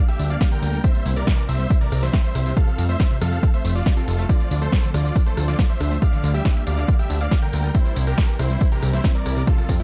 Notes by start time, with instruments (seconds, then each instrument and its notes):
Already playing: ambient pad G3 A#3 D4
0.08 synth pluck G3, supersaw synth G4 E5, closed hi-hat, tambourine
0.19 analog synth bass D2, synth pluck D4, open hi-hat, tambourine
0.30 synth pluck A#3, supersaw synth D5 F5, tambourine
0.41 synth pluck G4, kick, snare, closed hi-hat, tambourine
0.52 synth pluck D3, supersaw synth A#4 G5, closed hi-hat, tambourine
0.62 analog synth bass D2, synth pluck D3, open hi-hat, tambourine
0.73 synth pluck G3, closed hi-hat, tambourine
0.84 ambient pad E3 C4, synth pluck C4, supersaw synth C5 E5, kick, closed hi-hat, tambourine
0.95 synth pluck G3, closed hi-hat, tambourine
1.06 analog synth bass C2, synth pluck E4, open hi-hat, tambourine
1.16 synth pluck C3, supersaw synth A#4 D5, closed hi-hat, tambourine
1.27 synth pluck C3, kick, snare, closed hi-hat, tambourine
1.38 synth pluck E3, closed hi-hat, tambourine
1.49 analog synth bass C2, synth pluck C4, supersaw synth C5 E5, open hi-hat, tambourine
1.59 synth pluck G3, closed hi-hat, tambourine
1.70 synth pluck E4, kick, closed hi-hat, tambourine
1.81 synth pluck C3, supersaw synth A#4 D5, closed hi-hat, tambourine
1.92 analog synth bass C2, synth pluck C3, cross-stick, open hi-hat, tambourine
2.03 synth pluck E3, supersaw synth C5 E5, snare, closed hi-hat, tambourine
2.14 synth pluck C4, kick, snare, closed hi-hat, tambourine
2.24 synth pluck G3, supersaw synth C5 E5, closed hi-hat, tambourine
2.35 analog synth bass C2, synth pluck E4, cross-stick, open hi-hat, tambourine
2.46 synth pluck C3, closed hi-hat, tambourine
2.57 synth pluck C3, ambient pad F3 A3, supersaw synth A4 F5, kick, closed hi-hat, tambourine
2.67 synth pluck F3, closed hi-hat, tambourine
2.78 analog synth bass F2, synth pluck C4, open hi-hat, tambourine
2.89 synth pluck A3, supersaw synth C5 E5, closed hi-hat, tambourine
3.00 synth pluck F4, kick, snare, closed hi-hat, tambourine
3.11 synth pluck C3, closed hi-hat, tambourine
3.21 analog synth bass F2, synth pluck C3, supersaw synth A4 F5, cross-stick, snare, open hi-hat, tambourine
3.32 synth pluck F3, closed hi-hat, tambourine
3.43 synth pluck C4, kick, closed hi-hat, tambourine
3.54 synth pluck A3, supersaw synth C5 E5, closed hi-hat, tambourine
3.65 analog synth bass F1, synth pluck A3, open hi-hat, tambourine
3.75 synth pluck F3, supersaw synth F4 D5, closed hi-hat, tambourine
3.86 synth pluck C3, kick, snare, closed hi-hat, tambourine
3.97 synth pluck C4, supersaw synth F4 A4, closed hi-hat, tambourine
4.08 analog synth bass F1, synth pluck C3, open hi-hat, tambourine
4.18 synth pluck A3, closed hi-hat, tambourine
4.29 synth pluck D3, ambient pad D4, supersaw synth F4 D5, kick, closed hi-hat, tambourine
4.40 synth pluck F3, closed hi-hat, tambourine
4.51 analog synth bass D2, synth pluck D4, open hi-hat, tambourine
4.62 synth pluck A3, supersaw synth A4 C5, closed hi-hat, tambourine
4.72 synth pluck F4, kick, snare, closed hi-hat, tambourine
4.83 synth pluck D3, closed hi-hat, tambourine
4.94 analog synth bass D2, synth pluck D3, supersaw synth F4 D5, cross-stick, open hi-hat, tambourine
5.05 synth pluck F3, closed hi-hat, tambourine
5.16 synth pluck D4, kick, closed hi-hat, tambourine
5.26 synth pluck A3, supersaw synth A4 C5, closed hi-hat, tambourine
5.37 analog synth bass D2, synth pluck F4, cross-stick, open hi-hat, tambourine
5.48 synth pluck D3, supersaw synth F4 D5, snare, tambourine
5.59 synth pluck D3, kick, snare, closed hi-hat, tambourine
5.69 synth pluck F3, supersaw synth C5 E5, closed hi-hat, tambourine
5.80 analog synth bass D2, synth pluck D4, cross-stick, open hi-hat, tambourine
5.91 synth pluck A3, closed hi-hat, tambourine
6.02 ambient pad G3 A#3, synth pluck G4, supersaw synth D5 F5, kick, closed hi-hat, tambourine
6.13 synth pluck D3, closed hi-hat, tambourine
6.24 analog synth bass D2, synth pluck D3, open hi-hat, tambourine
6.34 synth pluck G3, supersaw synth G4 E5, closed hi-hat, tambourine
6.45 synth pluck D4, kick, snare, closed hi-hat, tambourine
6.56 synth pluck A#3, closed hi-hat, tambourine
6.67 analog synth bass D2, synth pluck G4, supersaw synth D5 F5, open hi-hat, tambourine
6.78 synth pluck D3, closed hi-hat, tambourine
6.88 synth pluck D3, kick, closed hi-hat, tambourine
6.99 synth pluck G3, supersaw synth G4 E5, closed hi-hat, tambourine
7.10 analog synth bass D2, synth pluck D4, open hi-hat, tambourine
7.21 synth pluck A#3, supersaw synth D5 F5, closed hi-hat, tambourine
7.32 synth pluck G4, kick, snare, closed hi-hat, tambourine
7.42 synth pluck D3, supersaw synth A#4 G5, closed hi-hat, tambourine
7.53 analog synth bass D2, synth pluck D3, open hi-hat, tambourine
7.64 synth pluck G3, closed hi-hat, tambourine
7.75 ambient pad E3 C4, synth pluck C4, supersaw synth E4 C5, kick, closed hi-hat, tambourine
7.85 synth pluck G3, closed hi-hat, tambourine
7.96 analog synth bass C2, synth pluck E4, open hi-hat, tambourine
8.07 synth pluck C3, supersaw synth G4 A#4, closed hi-hat, tambourine
8.18 synth pluck C3, kick, snare, closed hi-hat, tambourine
8.29 synth pluck E3, closed hi-hat, tambourine
8.39 analog synth bass C2, synth pluck C4, supersaw synth E4 C5, cross-stick, open hi-hat, tambourine
8.50 synth pluck G3, tambourine
8.61 synth pluck E4, kick, closed hi-hat, tambourine
8.72 synth pluck C3, supersaw synth G4 A#4, closed hi-hat, tambourine
8.82 analog synth bass C2, synth pluck C3, cross-stick, open hi-hat, tambourine
8.93 synth pluck E3, supersaw synth E4 C5, snare, closed hi-hat, tambourine
9.04 synth pluck C4, kick, snare, closed hi-hat, tambourine
9.15 synth pluck G3, supersaw synth A#4 D5, closed hi-hat, tambourine
9.26 analog synth bass C2, synth pluck E4, cross-stick, open hi-hat, tambourine
9.36 synth pluck C3, closed hi-hat, tambourine
9.47 ambient pad F3 A3, supersaw synth F4 A4, kick, closed hi-hat, tambourine
9.58 synth pluck F3, closed hi-hat, tambourine
9.69 analog synth bass F2, synth pluck C4, kick, open hi-hat, tambourine
9.80 synth pluck A3, supersaw synth E4 G4, closed hi-hat, tambourine